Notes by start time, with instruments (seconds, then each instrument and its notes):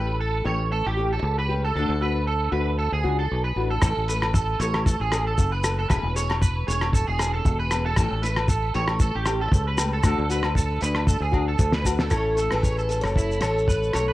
Already playing: fingered electric bass A1, nylon-string guitar A3 C#4 G4, clean electric guitar B4
0.21 clean electric guitar A4
0.44 fingered electric bass A1, nylon-string guitar A3 C#4 G4, clean electric guitar C#5
0.72 clean electric guitar A4
0.86 fingered electric bass A1, clean electric guitar G4
0.97 nylon-string guitar A3 C#4 G4
1.13 clean electric guitar A4
1.23 fingered electric bass C#2
1.39 clean electric guitar B4
1.49 nylon-string guitar A3 C#4 G4
1.65 clean electric guitar A4
1.75 fingered electric bass D2, nylon-string guitar A3 D4 F#4, clean electric guitar A4
1.89 fingered electric bass D2
2.01 nylon-string guitar D4 F#4, clean electric guitar B4
2.27 clean electric guitar A4
2.52 fingered electric bass D2, nylon-string guitar D4 F#4, clean electric guitar B4
2.79 clean electric guitar A4
2.92 fingered electric bass D2, clean electric guitar G#4
3.04 fingered electric bass C#2, nylon-string guitar D4 F#4
3.19 clean electric guitar A4
3.31 fingered electric bass B1
3.44 clean electric guitar B4
3.56 fingered electric bass A1, nylon-string guitar F#4
3.61 nylon-string guitar D4
3.70 clean electric guitar A4
3.82 fingered electric bass A1, nylon-string guitar E3 C#4 A4, clean electric guitar A4, muted nylon-string guitar stroke, kick, cross-stick, low agogo, shekere
3.97 fingered electric bass A1
4.08 nylon-string guitar C#4 A4, clean electric guitar B4, closed hi-hat, shekere
4.13 nylon-string guitar A3
4.22 cross-stick, low agogo
4.34 clean electric guitar A4, kick, shekere
4.60 fingered electric bass A1, nylon-string guitar A4, clean electric guitar C#5, closed hi-hat, shekere
4.64 nylon-string guitar A3 C#4
4.74 cross-stick, low agogo
4.86 clean electric guitar A4, kick, shekere
5.00 fingered electric bass A1, clean electric guitar G#4
5.12 nylon-string guitar C#4 A4, cross-stick, closed hi-hat, low agogo, shekere
5.16 nylon-string guitar A3
5.27 clean electric guitar A4
5.38 fingered electric bass F#1, kick, shekere
5.52 clean electric guitar B4
5.64 nylon-string guitar C#4 A4, cross-stick, closed hi-hat, low agogo, shekere
5.68 nylon-string guitar A3
5.79 clean electric guitar A4
5.89 fingered electric bass E1, nylon-string guitar E3 B3 C#4 G#4, clean electric guitar B4, kick, cross-stick, low agogo, shekere
6.03 fingered electric bass E1
6.16 nylon-string guitar B3 C#4 G#4, clean electric guitar C#5, closed hi-hat, shekere
6.30 cross-stick, low agogo
6.42 clean electric guitar B4, kick, shekere
6.68 fingered electric bass E1, nylon-string guitar B3 C#4 G#4, clean electric guitar C#5, closed hi-hat, shekere
6.81 cross-stick, low agogo
6.93 clean electric guitar A4, kick, shekere
7.07 fingered electric bass E1, clean electric guitar G#4
7.19 nylon-string guitar B3 C#4 G#4, cross-stick, closed hi-hat, low agogo, shekere
7.34 clean electric guitar A4
7.45 fingered electric bass E1, kick, shekere
7.59 clean electric guitar B4
7.71 nylon-string guitar C#4 G#4, cross-stick, closed hi-hat, low agogo, shekere
7.75 nylon-string guitar B3
7.86 clean electric guitar A4
7.96 fingered electric bass A1, nylon-string guitar E3 A3 C#4 G4, clean electric guitar A4, kick, cross-stick, low agogo, shekere
8.11 fingered electric bass A1
8.22 nylon-string guitar A3 C#4, clean electric guitar B4, muted nylon-string guitar stroke, closed hi-hat, shekere
8.36 cross-stick, low agogo
8.48 clean electric guitar A4, kick, shekere
8.74 fingered electric bass A1, nylon-string guitar A3 C#4 G4, clean electric guitar C#5, closed hi-hat
8.88 cross-stick, low agogo
9.00 clean electric guitar A4, kick, shekere
9.15 fingered electric bass A1, clean electric guitar G4
9.26 nylon-string guitar A3 C#4 G4, cross-stick, closed hi-hat, low agogo, shekere
9.41 clean electric guitar A4
9.52 fingered electric bass C#2, kick, shekere
9.68 clean electric guitar B4
9.77 nylon-string guitar A3 C#4 G4, cross-stick, closed hi-hat, low agogo, shekere
9.93 clean electric guitar A4
10.04 fingered electric bass D2, nylon-string guitar A3 D4 F#4, clean electric guitar A4, kick, cross-stick, low agogo, shekere
10.18 fingered electric bass D2
10.30 nylon-string guitar D4 F#4, clean electric guitar B4, closed hi-hat, shekere
10.43 cross-stick, low agogo
10.55 clean electric guitar A4, kick, shekere
10.81 fingered electric bass D2, nylon-string guitar D4, clean electric guitar B4, muted nylon-string guitar stroke, closed hi-hat, shekere
10.95 cross-stick, low agogo
11.07 clean electric guitar A4, kick, shekere
11.20 fingered electric bass D2, clean electric guitar G#4
11.32 nylon-string guitar D4 F#4, kick, low agogo
11.48 clean electric guitar A4
11.59 fingered electric bass D2, kick, shekere
11.72 clean electric guitar B4, snare
11.85 nylon-string guitar F#4, kick, low agogo, shekere
11.90 nylon-string guitar D4
11.99 clean electric guitar A4, snare
12.10 fingered electric bass A1, nylon-string guitar E3 C#4 A4, steel-string acoustic guitar E4 A4, clean electric guitar C#5, muted nylon-string guitar stroke, kick, cross-stick, low agogo, shekere
12.36 nylon-string guitar A3 C#4 A4, clean electric guitar A4, closed hi-hat, shekere
12.51 fingered electric bass A1, steel-string acoustic guitar G#4 B4, cross-stick, low agogo
12.63 clean electric guitar C#5, kick, shekere
12.78 clean electric guitar A4, shekere
12.88 nylon-string guitar A3 C#4 A4, closed hi-hat, shekere
13.01 fingered electric bass F#1, steel-string acoustic guitar A4 C#5, cross-stick, low agogo
13.07 shekere
13.16 clean electric guitar E4, kick, shekere
13.32 shekere
13.41 fingered electric bass A1, nylon-string guitar A3 C#4 A4, clean electric guitar A4, steel-string acoustic guitar A4 C#5, cross-stick, closed hi-hat, low agogo, shekere
13.58 shekere
13.68 clean electric guitar B4, kick, shekere
13.83 shekere
13.93 fingered electric bass B1, nylon-string guitar C#4 A4, clean electric guitar C#5, cross-stick, closed hi-hat, low agogo, shekere
13.98 nylon-string guitar A3
14.08 clean electric guitar B4